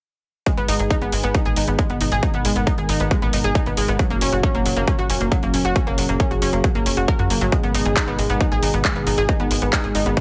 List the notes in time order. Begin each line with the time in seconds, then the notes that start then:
0.46 B2 D#3 G#3 D#4 G#4, kick, closed hi-hat
0.57 G#1 B3, closed hi-hat
0.68 G#1 D#4, open hi-hat
0.79 G#1 G#4, closed hi-hat
0.90 D#4, kick, closed hi-hat
1.02 G#1 B3, closed hi-hat
1.12 G#1 G#3, open hi-hat
1.23 G#1 B3, closed hi-hat
1.34 D#4, kick, closed hi-hat
1.45 A#1 G#4, closed hi-hat
1.56 G#1 D#4, open hi-hat
1.68 G#1 B3, closed hi-hat
1.79 G#3, kick, closed hi-hat
1.90 G#1 B3, closed hi-hat
2.01 G#1 D#4, open hi-hat
2.12 G#1 G#4, closed hi-hat
2.23 D#4 A#4, kick, closed hi-hat
2.34 G#1 B3, closed hi-hat
2.45 G#1 G#3, open hi-hat
2.56 G#1 B3, closed hi-hat
2.67 D#4, kick, closed hi-hat
2.78 G#1 G#4, closed hi-hat
2.89 G#1 D#4, open hi-hat
3.00 G#1 B3, closed hi-hat
3.11 G#3, kick, closed hi-hat
3.22 A#1 B3, closed hi-hat
3.33 G#1 D#4, open hi-hat
3.44 G#1 G#4, closed hi-hat
3.55 D#4, kick, closed hi-hat
3.66 G#1 B3, closed hi-hat
3.77 G#1 G#3, open hi-hat
3.88 G#1 B3, closed hi-hat
3.99 A#2 C#3 F#3 C#4 F#4, kick, closed hi-hat
4.10 F#1 A#3, closed hi-hat
4.21 F#1 C#4, open hi-hat
4.32 F#1 F#4, closed hi-hat
4.43 C#4, kick, closed hi-hat
4.54 F#1 A#3, closed hi-hat
4.65 F#1 F#3, open hi-hat
4.76 F#1 A#3, closed hi-hat
4.88 C#4, kick, closed hi-hat
4.99 G#1 F#4, closed hi-hat
5.10 F#1 C#4, open hi-hat
5.21 F#1 A#3, closed hi-hat
5.32 F#3, kick, closed hi-hat
5.43 F#1 A#3, closed hi-hat
5.54 F#1 C#4, open hi-hat
5.65 F#1 F#4, closed hi-hat
5.76 G#4, kick, closed hi-hat
5.87 F#1 A#3, closed hi-hat
5.98 F#1 F#3, open hi-hat
6.09 F#1 A#3, closed hi-hat
6.20 C#4, kick, closed hi-hat
6.31 F#1 F#4, closed hi-hat
6.42 F#1 C#4, open hi-hat
6.53 F#1 A#3, closed hi-hat
6.64 F#3, kick, closed hi-hat
6.75 G#1 A#3, closed hi-hat
6.86 F#1 C#4, open hi-hat
6.97 F#1 F#4, closed hi-hat
7.08 A#4, kick, closed hi-hat
7.19 F#2 F#4, closed hi-hat
7.30 F#1 A#3, open hi-hat
7.41 G#1 F#3, closed hi-hat
7.52 B2 D#3 G#3 D#4 G#4, kick, closed hi-hat
7.63 G#1 B3, closed hi-hat
7.74 G#1 D#4, open hi-hat
7.85 G#1 G#4, closed hi-hat
7.96 D#4, kick, clap, closed hi-hat
8.08 G#1 B3, closed hi-hat
8.18 G#1 G#3, open hi-hat
8.29 G#1 B3, closed hi-hat
8.41 D#4, kick, closed hi-hat
8.52 A#1 G#4, closed hi-hat
8.63 G#1 D#4, open hi-hat
8.74 G#1 B3, closed hi-hat
8.85 G#3, kick, clap, closed hi-hat
8.96 G#1 B3, closed hi-hat
9.07 G#1 D#4, open hi-hat
9.18 G#1 G#4, closed hi-hat
9.29 D#4, kick, closed hi-hat
9.40 G#1 B3, closed hi-hat
9.51 G#1 G#3, open hi-hat
9.62 G#1 B3, closed hi-hat
9.73 D#4, kick, clap, closed hi-hat
9.84 G#1 G#4, closed hi-hat
9.95 G#1 D#4, open hi-hat
10.06 G#1 B3, closed hi-hat
10.17 G#3, kick, closed hi-hat